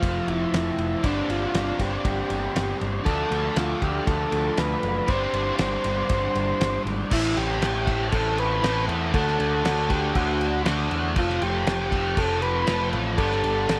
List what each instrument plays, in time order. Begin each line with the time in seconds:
Already playing: overdriven electric guitar F2 C3 F3 A3 C4 F4, tonewheel organ F3 C5 A5, transistor combo organ F4
0.02 picked electric bass F1, kick, ride
0.27 picked electric bass F1, transistor combo organ E4, ride
0.52 picked electric bass F1, snare, ride
0.78 picked electric bass F1, ride
1.02 picked electric bass G1, overdriven electric guitar G2 D3 G3 C4 D4, transistor combo organ D4, tonewheel organ G4 D5 C6, kick, ride
1.28 picked electric bass G1, transistor combo organ F4, ride
1.54 picked electric bass G1, snare, ride
1.79 picked electric bass G1, transistor combo organ G4, kick, ride
2.04 picked electric bass G1, transistor combo organ G4, kick, ride
2.30 picked electric bass G1, ride
2.55 picked electric bass G1, snare, ride
2.81 picked electric bass G1, ride
3.04 picked electric bass D2, overdriven electric guitar D3 F3 A3 D4, transistor combo organ A4, tonewheel organ A4 F5 D6, kick, ride
3.31 picked electric bass D2, ride
3.56 picked electric bass D2, transistor combo organ F4, snare, ride
3.82 picked electric bass D2, transistor combo organ G4, kick, ride
4.07 picked electric bass D2, transistor combo organ A4, kick, ride
4.32 picked electric bass D2, ride
4.57 picked electric bass D2, transistor combo organ B4, snare, ride
4.83 picked electric bass F#1, ride
5.07 picked electric bass G1, overdriven electric guitar G2 D3 G3 C4 D4, transistor combo organ C5, tonewheel organ C5 G5, kick, ride
5.33 picked electric bass G1, ride
5.59 picked electric bass G1, transistor combo organ C5, snare, ride
5.84 picked electric bass G1, ride
6.09 picked electric bass G1, kick, ride
6.35 picked electric bass G1, ride
6.60 picked electric bass G1, snare, ride
6.85 picked electric bass G#1, ride
7.10 picked electric bass A1, overdriven electric guitar A2 E3 A3 C4 E4 A4, transistor combo organ E4, kick, crash
7.37 picked electric bass A1, transistor combo organ G4, crash
7.62 picked electric bass A1, snare, crash
7.85 overdriven electric guitar A2 E3 A3 C4 E4 A4, kick, crash
8.12 picked electric bass A1, transistor combo organ A4, kick, crash
8.38 transistor combo organ B4, crash
8.61 picked electric bass A1, overdriven electric guitar A2 E3 A3 C4 E4 A4, snare, crash
8.88 picked electric bass E2, crash
9.12 picked electric bass D2, overdriven electric guitar D3 A3 D4 F#4 A4, transistor combo organ A4, kick, crash
9.28 snare
9.39 picked electric bass D2, crash
9.64 picked electric bass D2, snare, crash
9.88 overdriven electric guitar D3 A3 D4 F#4 A4, transistor combo organ G4, kick, crash
10.15 picked electric bass D2, transistor combo organ F#4, kick, crash
10.41 crash
10.64 picked electric bass D2, overdriven electric guitar D3 A3 D4 F#4 A4, snare, crash
10.91 picked electric bass E2, crash
11.15 picked electric bass F1, overdriven electric guitar F3 A3 C4 F4 A4, transistor combo organ F4, kick, crash
11.29 snare
11.42 picked electric bass F1, transistor combo organ G4, crash
11.66 picked electric bass F1, snare, crash
11.90 overdriven electric guitar F3 A3 C4 F4 A4, kick, crash
12.17 picked electric bass F1, transistor combo organ A4, kick, crash
12.42 transistor combo organ B4, crash
12.66 picked electric bass F1, overdriven electric guitar F3 A3 C4 F4 A4, snare, crash
12.93 picked electric bass A1, crash
13.16 picked electric bass G1, overdriven electric guitar G2 D3 G3 B3 D4, transistor combo organ A4, kick, crash
13.31 snare
13.44 picked electric bass G1, crash
13.68 picked electric bass G1, snare, crash